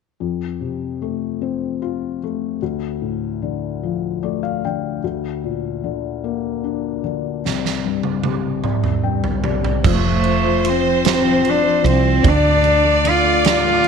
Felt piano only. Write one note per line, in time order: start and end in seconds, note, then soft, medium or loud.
0.20 2.57 F2 soft
0.61 2.17 C3 soft
1.02 2.22 A3 soft
1.41 2.58 C4 soft
1.82 2.59 F4 soft
2.24 2.61 A3 soft
2.62 4.99 D2 soft
3.02 4.58 A2 soft
3.42 4.63 D3 soft
3.83 4.99 F3 soft
4.23 5.01 A3 soft
4.23 4.41 D5 soft
4.43 4.61 F5 soft
4.65 5.03 D3 soft
4.65 5.01 G5 soft
5.04 7.40 D2 soft
5.44 7.00 A#2 soft
5.84 7.02 D3 soft
6.24 7.40 A#3 soft
6.64 7.41 D4 soft
7.04 7.42 D3 soft
7.46 8.61 C2 soft
7.85 8.62 G2 soft
8.25 8.63 C3 soft
8.64 9.80 C2 soft
9.04 9.82 G2 soft
9.04 9.41 G5 soft
9.44 9.83 C3 soft
9.44 9.81 D5 soft
9.84 10.03 F3 medium
10.04 10.22 F3 soft
10.24 10.43 F3 soft
10.44 10.63 F3 medium
10.64 10.83 F3 medium
10.84 11.23 F3 soft
11.05 12.21 C4 medium
11.24 11.42 F3 soft
11.43 11.62 F3 medium
11.63 11.81 F3 medium
11.82 12.02 F3 medium
12.03 12.23 F3 medium
12.23 12.62 D3 medium
12.44 12.82 A3 soft
12.63 13.03 D3 medium
12.84 13.22 A3 medium
13.05 13.43 D3 medium
13.23 13.62 A3 soft
13.45 13.82 D3 medium
13.64 13.88 A3 medium
13.84 13.88 D3 medium